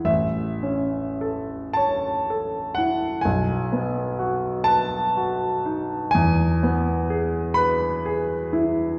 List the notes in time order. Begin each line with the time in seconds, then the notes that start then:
Already playing: G#4 B4 F#5
0.05 A1 E5
0.63 C#4
1.21 A4
1.73 C#5 A5
2.30 A4
2.75 E4 F#5
3.21 B1 G#5
3.72 B3
4.19 F#4
4.64 B4 A5
5.17 F#4
5.66 D#4
6.11 E2 G#5
6.63 B3
7.10 G#4
7.54 B4 B5
8.05 G#4
8.53 E4